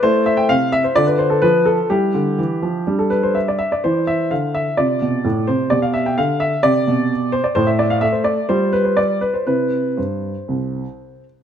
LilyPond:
<<
  \new Staff \with { instrumentName = "Grand piano" } { \time 4/4 \key c \major \tempo 4 = 127 << { c''8 e''16 g''16 f''8 e''16 c''16 d''16 b'16 c''16 a'16 b'8 a'8 | g'2~ g'16 a'16 b'16 c''16 e''16 d''16 e''16 d''16 | c''8 e''8 f''8 e''8 d''4. c''8 | d''16 f''16 e''16 g''16 f''8 e''8 d''4. c''16 d''16 |
c''16 e''16 d''16 f''16 e''16 c''16 d''8 c''8 b'16 c''16 d''8 b'16 c''16 | b'4 c''2~ c''8 r8 | } \\ { e'2 f'2 | e'2 d'2 | e'2 f'2 | g'2 g'2 |
a'2 f'2 | r1 | } >> }
  \new Staff \with { instrumentName = "Grand piano" } { \clef bass \time 4/4 \key c \major a4 c4 d4 f4 | g8 d8 e8 f8 g2 | e4 d4 c8 b,8 a,8 c8 | b,4 d4 c8 b,4. |
a,4 a4 g2 | <c c' e'>4 g,4 c,4 r4 | }
>>